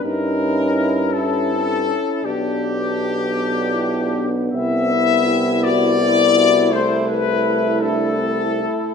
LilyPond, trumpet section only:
\new Staff \with { instrumentName = "Trumpet section" } { \time 12/8 \key g \major \tempo 4. = 54 bes'4. a'4. g'2. | e''4. d''4. c''8 b'4 a'4. | }